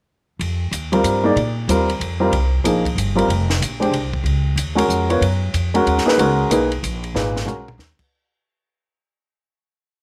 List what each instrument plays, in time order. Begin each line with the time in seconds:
0.39 upright bass F2, ride
0.71 upright bass D#2, hi-hat pedal, ride
0.92 grand piano G3 C4 F4 A#4, ride
1.04 upright bass G2, hi-hat pedal, ride
1.24 grand piano A#3 D#4 G#4 D5
1.36 upright bass A#2, ride
1.68 upright bass D#2, grand piano G3 C4 F4 A#4, hi-hat pedal, ride
1.90 ride
2.00 upright bass F2, ride
2.20 grand piano G3 C4 F4 A#4
2.32 upright bass C2, ride
2.64 upright bass A#1, grand piano F3 A#3 D#4 G#4, hi-hat pedal, ride
2.85 kick, ride
2.96 upright bass G1, hi-hat pedal, ride
3.15 grand piano G3 C4 F4 A#4, ride
3.28 upright bass F1, ride
3.50 snare
3.60 upright bass A#1, hi-hat pedal, ride
3.80 grand piano G#3 D4 G4 C5, ride
3.92 upright bass C2, ride
4.14 kick
4.24 upright bass C#2, ride
4.56 upright bass D#2, hi-hat pedal, ride
4.75 grand piano G#3 C#4 F#4 A#4, ride
4.88 upright bass F2, hi-hat pedal
5.10 grand piano B3 F4 A#4 C#5, ride
5.21 upright bass F#2, ride
5.54 upright bass F2, hi-hat pedal, ride
5.74 grand piano G#3 C#4 F#4 A#4, ride
5.86 upright bass D#2, ride
5.98 snare
6.06 grand piano A#3 D#4 G#4 B4, snare
6.18 upright bass C#2, grand piano G#3 C#4 F#4 A#4, ride
6.50 upright bass B1, grand piano A#3 D#4 G#4 B4, hi-hat pedal, ride
6.72 ride
6.83 upright bass A#1, hi-hat pedal, ride
7.04 ride
7.14 upright bass G#1, grand piano A#2 D#4 G#4 B4, snare
7.37 snare
7.46 upright bass B1, grand piano G#3 C#4 F#4 A#4, floor tom, hi-hat pedal
7.68 floor tom
7.78 upright bass D#2, snare
7.99 muted upright bass stroke, kick, crash